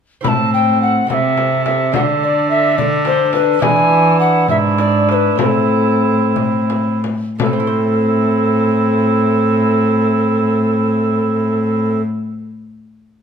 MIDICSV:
0, 0, Header, 1, 7, 480
1, 0, Start_track
1, 0, Key_signature, 0, "minor"
1, 0, Tempo, 564440
1, 210, Time_signature, 6, 3, 24, 8
1, 3569, Tempo, 612245
1, 5009, Tempo, 681818
1, 5969, Tempo, 714286
1, 9887, End_track
2, 0, Start_track
2, 0, Title_t, "Recorder"
2, 0, Program_c, 0, 74
2, 204, Note_on_c, 0, 83, 75
2, 239, Note_on_c, 0, 81, 81
2, 248, Note_off_c, 0, 83, 0
2, 431, Note_off_c, 0, 81, 0
2, 457, Note_on_c, 0, 79, 77
2, 690, Note_off_c, 0, 79, 0
2, 697, Note_on_c, 0, 78, 79
2, 929, Note_off_c, 0, 78, 0
2, 934, Note_on_c, 0, 78, 70
2, 968, Note_on_c, 0, 76, 76
2, 977, Note_off_c, 0, 78, 0
2, 1401, Note_off_c, 0, 76, 0
2, 1408, Note_on_c, 0, 76, 75
2, 1643, Note_off_c, 0, 76, 0
2, 1660, Note_on_c, 0, 78, 76
2, 1713, Note_off_c, 0, 78, 0
2, 1898, Note_on_c, 0, 74, 73
2, 2126, Note_off_c, 0, 74, 0
2, 2131, Note_on_c, 0, 76, 78
2, 2358, Note_off_c, 0, 76, 0
2, 2364, Note_on_c, 0, 74, 82
2, 2417, Note_off_c, 0, 74, 0
2, 2610, Note_on_c, 0, 72, 79
2, 2835, Note_off_c, 0, 72, 0
2, 2840, Note_on_c, 0, 71, 84
2, 3082, Note_on_c, 0, 80, 99
2, 3095, Note_off_c, 0, 71, 0
2, 3565, Note_off_c, 0, 80, 0
2, 3570, Note_on_c, 0, 78, 86
2, 3794, Note_off_c, 0, 78, 0
2, 3808, Note_on_c, 0, 76, 91
2, 3859, Note_off_c, 0, 76, 0
2, 4033, Note_on_c, 0, 74, 87
2, 4265, Note_off_c, 0, 74, 0
2, 4282, Note_on_c, 0, 72, 67
2, 4311, Note_on_c, 0, 71, 73
2, 4318, Note_off_c, 0, 72, 0
2, 4513, Note_off_c, 0, 71, 0
2, 4521, Note_on_c, 0, 71, 69
2, 4559, Note_on_c, 0, 69, 75
2, 4567, Note_off_c, 0, 71, 0
2, 5230, Note_off_c, 0, 69, 0
2, 5977, Note_on_c, 0, 69, 67
2, 9073, Note_off_c, 0, 69, 0
2, 9887, End_track
3, 0, Start_track
3, 0, Title_t, "Cor anglais"
3, 0, Program_c, 1, 69
3, 204, Note_on_c, 1, 69, 58
3, 894, Note_off_c, 1, 69, 0
3, 942, Note_on_c, 1, 69, 60
3, 1639, Note_off_c, 1, 69, 0
3, 1652, Note_on_c, 1, 69, 60
3, 2351, Note_off_c, 1, 69, 0
3, 2378, Note_on_c, 1, 69, 58
3, 3076, Note_off_c, 1, 69, 0
3, 3089, Note_on_c, 1, 64, 68
3, 3770, Note_off_c, 1, 64, 0
3, 3799, Note_on_c, 1, 64, 65
3, 4497, Note_off_c, 1, 64, 0
3, 4507, Note_on_c, 1, 64, 61
3, 5694, Note_off_c, 1, 64, 0
3, 5970, Note_on_c, 1, 64, 57
3, 9066, Note_off_c, 1, 64, 0
3, 9887, End_track
4, 0, Start_track
4, 0, Title_t, "Trombone"
4, 0, Program_c, 2, 57
4, 223, Note_on_c, 2, 60, 53
4, 904, Note_off_c, 2, 60, 0
4, 945, Note_on_c, 2, 60, 57
4, 1654, Note_on_c, 2, 62, 59
4, 1667, Note_off_c, 2, 60, 0
4, 2364, Note_off_c, 2, 62, 0
4, 2369, Note_on_c, 2, 62, 65
4, 3071, Note_off_c, 2, 62, 0
4, 3086, Note_on_c, 2, 62, 64
4, 3769, Note_off_c, 2, 62, 0
4, 3801, Note_on_c, 2, 62, 62
4, 4505, Note_on_c, 2, 60, 60
4, 4516, Note_off_c, 2, 62, 0
4, 5716, Note_off_c, 2, 60, 0
4, 5969, Note_on_c, 2, 60, 55
4, 9066, Note_off_c, 2, 60, 0
4, 9887, End_track
5, 0, Start_track
5, 0, Title_t, "Lute"
5, 0, Program_c, 3, 24
5, 177, Note_on_c, 3, 60, 40
5, 190, Note_on_c, 3, 64, 41
5, 203, Note_on_c, 3, 69, 39
5, 211, Note_on_c, 3, 45, 47
5, 893, Note_off_c, 3, 60, 0
5, 898, Note_off_c, 3, 45, 0
5, 899, Note_off_c, 3, 64, 0
5, 906, Note_off_c, 3, 69, 0
5, 907, Note_on_c, 3, 60, 43
5, 919, Note_on_c, 3, 64, 43
5, 927, Note_on_c, 3, 69, 39
5, 937, Note_on_c, 3, 48, 47
5, 1614, Note_off_c, 3, 60, 0
5, 1617, Note_off_c, 3, 48, 0
5, 1620, Note_off_c, 3, 64, 0
5, 1625, Note_off_c, 3, 69, 0
5, 1632, Note_on_c, 3, 62, 42
5, 1640, Note_on_c, 3, 69, 42
5, 1664, Note_on_c, 3, 50, 51
5, 3040, Note_off_c, 3, 62, 0
5, 3044, Note_off_c, 3, 69, 0
5, 3053, Note_on_c, 3, 59, 49
5, 3056, Note_off_c, 3, 50, 0
5, 3062, Note_on_c, 3, 62, 49
5, 3072, Note_on_c, 3, 64, 50
5, 3084, Note_on_c, 3, 52, 52
5, 3768, Note_off_c, 3, 52, 0
5, 3801, Note_on_c, 3, 44, 52
5, 4466, Note_off_c, 3, 59, 0
5, 4470, Note_off_c, 3, 62, 0
5, 4474, Note_off_c, 3, 64, 0
5, 4477, Note_on_c, 3, 57, 39
5, 4481, Note_off_c, 3, 44, 0
5, 4492, Note_on_c, 3, 60, 40
5, 4500, Note_on_c, 3, 64, 41
5, 4509, Note_on_c, 3, 45, 47
5, 5762, Note_off_c, 3, 45, 0
5, 5926, Note_off_c, 3, 57, 0
5, 5933, Note_off_c, 3, 60, 0
5, 5936, Note_off_c, 3, 64, 0
5, 5961, Note_on_c, 3, 45, 47
5, 6008, Note_on_c, 3, 57, 44
5, 6058, Note_on_c, 3, 60, 46
5, 6103, Note_on_c, 3, 64, 47
5, 6153, Note_on_c, 3, 72, 47
5, 9058, Note_off_c, 3, 45, 0
5, 9105, Note_off_c, 3, 57, 0
5, 9154, Note_off_c, 3, 60, 0
5, 9200, Note_off_c, 3, 64, 0
5, 9249, Note_off_c, 3, 72, 0
5, 9887, End_track
6, 0, Start_track
6, 0, Title_t, "Cello"
6, 0, Program_c, 4, 42
6, 220, Note_on_c, 4, 45, 59
6, 902, Note_off_c, 4, 45, 0
6, 940, Note_on_c, 4, 48, 58
6, 1663, Note_on_c, 4, 50, 63
6, 1675, Note_off_c, 4, 48, 0
6, 3082, Note_off_c, 4, 50, 0
6, 3087, Note_on_c, 4, 52, 65
6, 3804, Note_on_c, 4, 44, 64
6, 3816, Note_off_c, 4, 52, 0
6, 4509, Note_off_c, 4, 44, 0
6, 4513, Note_on_c, 4, 45, 60
6, 5768, Note_off_c, 4, 45, 0
6, 5971, Note_on_c, 4, 45, 64
6, 9068, Note_off_c, 4, 45, 0
6, 9887, End_track
7, 0, Start_track
7, 0, Title_t, "Frame drum"
7, 208, Note_on_c, 9, 64, 73
7, 293, Note_off_c, 9, 64, 0
7, 934, Note_on_c, 9, 64, 49
7, 1019, Note_off_c, 9, 64, 0
7, 1170, Note_on_c, 9, 64, 49
7, 1255, Note_off_c, 9, 64, 0
7, 1410, Note_on_c, 9, 64, 49
7, 1495, Note_off_c, 9, 64, 0
7, 1646, Note_on_c, 9, 64, 69
7, 1731, Note_off_c, 9, 64, 0
7, 2367, Note_on_c, 9, 64, 50
7, 2452, Note_off_c, 9, 64, 0
7, 2594, Note_on_c, 9, 64, 50
7, 2679, Note_off_c, 9, 64, 0
7, 2831, Note_on_c, 9, 64, 52
7, 2916, Note_off_c, 9, 64, 0
7, 3079, Note_on_c, 9, 64, 70
7, 3164, Note_off_c, 9, 64, 0
7, 3793, Note_on_c, 9, 64, 47
7, 3872, Note_off_c, 9, 64, 0
7, 4030, Note_on_c, 9, 64, 47
7, 4108, Note_off_c, 9, 64, 0
7, 4267, Note_on_c, 9, 64, 45
7, 4345, Note_off_c, 9, 64, 0
7, 4502, Note_on_c, 9, 64, 68
7, 4580, Note_off_c, 9, 64, 0
7, 5238, Note_on_c, 9, 64, 48
7, 5309, Note_off_c, 9, 64, 0
7, 5477, Note_on_c, 9, 64, 47
7, 5547, Note_off_c, 9, 64, 0
7, 5718, Note_on_c, 9, 64, 47
7, 5788, Note_off_c, 9, 64, 0
7, 5968, Note_on_c, 9, 64, 75
7, 6035, Note_off_c, 9, 64, 0
7, 9887, End_track
0, 0, End_of_file